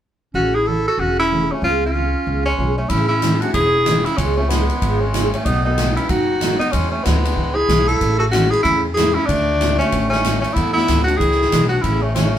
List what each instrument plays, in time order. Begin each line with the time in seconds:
0.34 upright bass A1, steel-string acoustic guitar C#3 E3 A3 C#4 G#4, clarinet C#4, tenor saxophone F#4
0.55 clarinet E4, tenor saxophone G#4
0.66 steel-string acoustic guitar C#3 E3 A3 C#4 G#4, clarinet E4, tenor saxophone A4
0.88 clarinet F#4, tenor saxophone A4
0.98 upright bass E1, steel-string acoustic guitar C#3 E3 A3 C#4 G#4, clarinet C#4, tenor saxophone F#4
1.19 clarinet C#4, tenor saxophone E4
1.32 steel-string acoustic guitar C#3 E3 A3 C#4 G#4
1.49 clarinet A3, upright piano B3 C#4 F4 G#4, tenor saxophone C#4
1.62 upright bass C#2, steel-string acoustic guitar C#3 G#3 B3 F4 G#4, clarinet C#4, tenor saxophone F4
1.85 clarinet C#4, tenor saxophone F4
1.95 steel-string acoustic guitar C#3 G#3 B3 F4 G#4
2.26 upright bass C#2, steel-string acoustic guitar C#3 G#3 B3 F4 G#4
2.46 clarinet G#3, tenor saxophone C#4
2.57 upright bass B1, steel-string acoustic guitar C#3 G#3 B3 F4 G#4, upright piano B3 C#4 F4 G#4
2.78 clarinet A3, tenor saxophone C#4
2.89 upright bass A1, steel-string acoustic guitar C#3 E3 A3 C#4 G#4, clarinet C#4, tenor saxophone E4, kick, ride
3.08 clarinet C#4, tenor saxophone E4
3.22 steel-string acoustic guitar C#3 E3 A3 C#4 G#4, snare, hi-hat pedal, ride
3.40 upright piano A3 C#4 E4 G#4, clarinet D4, tenor saxophone F#4, ride
3.52 upright bass E1, steel-string acoustic guitar C#3 E3 A3 C#4 G#4, clarinet E4, tenor saxophone G#4, kick, ride
3.86 steel-string acoustic guitar C#3 E3 A3 C#4 G#4, snare, hi-hat pedal, ride
4.05 clarinet C#4, tenor saxophone E4, ride
4.17 upright bass C#2, steel-string acoustic guitar C#3 G#3 B3 F4 G#4, clarinet G#3, tenor saxophone C#4, kick, ride
4.37 clarinet A3, upright piano B3 C#4 F4 G#4, tenor saxophone C#4
4.49 steel-string acoustic guitar C#3 G#3 B3 F4 G#4, clarinet G#3, tenor saxophone B3, snare, hi-hat pedal, ride
4.70 ride
4.81 upright bass G#1, steel-string acoustic guitar C#3 G#3 B3 F4 G#4, kick, ride
5.01 clarinet G#3, tenor saxophone C#4
5.13 steel-string acoustic guitar C#3 G#3 B3 F4 G#4, snare, hi-hat pedal, ride
5.34 clarinet A3, tenor saxophone C#4, ride
5.45 upright bass B1, steel-string acoustic guitar B2 F#3 A3 D#4 F#4, clarinet B3, tenor saxophone D#4, kick, ride
5.65 upright piano B3 D#4 F#4 A4, clarinet B3, tenor saxophone D#4
5.78 steel-string acoustic guitar B2 F#3 A3 D#4 F#4, snare, hi-hat pedal, ride
5.96 upright piano B3 D#4 F#4 B4, clarinet C#4, tenor saxophone E4, ride
6.08 upright bass F#1, clarinet D#4, tenor saxophone F#4, kick, ride
6.12 steel-string acoustic guitar B2 F#3 A3 D#4 F#4
6.41 steel-string acoustic guitar B2 F#3 A3 D#4 F#4, snare, hi-hat pedal, ride
6.58 clarinet B3, tenor saxophone D#4, ride
6.72 upright bass E2, steel-string acoustic guitar E3 B3 D4 G#4, clarinet G#3, tenor saxophone C#4, kick, ride
6.91 clarinet A3, tenor saxophone C#4
7.03 upright bass D2, steel-string acoustic guitar E3 B3 D4 G#4, clarinet G#3, tenor saxophone B3, upright piano C4 D#4 F4 A4, snare, hi-hat pedal, ride
7.25 upright piano B3 D4 E4 G#4, ride
7.37 upright bass C#2, steel-string acoustic guitar E3 B3 D4 G#4, kick
7.55 clarinet E4, tenor saxophone G#4
7.69 upright bass B1, steel-string acoustic guitar E3 B3 D4 G#4, snare, hi-hat pedal, ride
7.87 clarinet E4, tenor saxophone A4, ride
8.01 upright bass A1, steel-string acoustic guitar C#3 E3 A3 C#4 G#4, kick, ride
8.18 clarinet F#4, tenor saxophone A4
8.31 steel-string acoustic guitar C#3 E3, clarinet C#4, tenor saxophone F#4, snare, hi-hat pedal, ride
8.35 steel-string acoustic guitar A3 C#4 G#4
8.50 clarinet E4, tenor saxophone G#4, ride
8.63 upright bass E2, steel-string acoustic guitar C#3 E3 A3 C#4 G#4, clarinet C#4, tenor saxophone E4, kick, ride
8.94 steel-string acoustic guitar C#3 E3, upright piano A3 C#4 E4 G#4, clarinet E4, tenor saxophone G#4, snare, hi-hat pedal, ride
8.99 steel-string acoustic guitar A3 C#4 G#4
9.14 clarinet C#4, tenor saxophone E4
9.26 upright bass D2, clarinet A3, tenor saxophone D4, kick, ride
9.30 steel-string acoustic guitar D3 F#3 A3 C#4 F#4
9.61 steel-string acoustic guitar D3 F#3 A3 C#4 F#4, snare, hi-hat pedal, ride
9.79 upright piano D3 A3 C#4 F#4, clarinet A3, tenor saxophone C#4, ride
9.92 upright bass A1, steel-string acoustic guitar D3 F#3 A3 C#4 F#4, kick, ride
10.10 clarinet A3, tenor saxophone C#4, snare
10.24 steel-string acoustic guitar D3 F#3 A3 C#4 F#4, snare, hi-hat pedal, ride
10.41 clarinet A3, tenor saxophone C#4, ride
10.53 upright bass E2, steel-string acoustic guitar E3 A3 D4 E4 A4, clarinet B3, tenor saxophone E4, kick, ride
10.74 upright piano A3 B3 D4 E4, clarinet B3, tenor saxophone E4, snare
10.87 upright bass D2, steel-string acoustic guitar E3 A3 D4 E4 A4, snare, hi-hat pedal, ride
11.04 upright piano A3, clarinet D4, tenor saxophone F#4
11.08 upright piano B3 D4 F#4, ride
11.17 upright bass C#2, steel-string acoustic guitar E3 A3 D4 E4 A4, clarinet E4, tenor saxophone G#4, kick, ride
11.31 snare
11.41 snare
11.52 upright bass B1, steel-string acoustic guitar E3 A3 D4 E4 A4, snare, hi-hat pedal, ride
11.69 clarinet D4, tenor saxophone F#4
11.82 upright bass A1, steel-string acoustic guitar C#3 E3 A3 C#4 G#4, clarinet C#4, tenor saxophone E4, kick, ride
12.02 clarinet A3, tenor saxophone C#4
12.14 steel-string acoustic guitar C#3 E3 A3 C#4 G#4, clarinet A3, tenor saxophone C#4, snare, hi-hat pedal, ride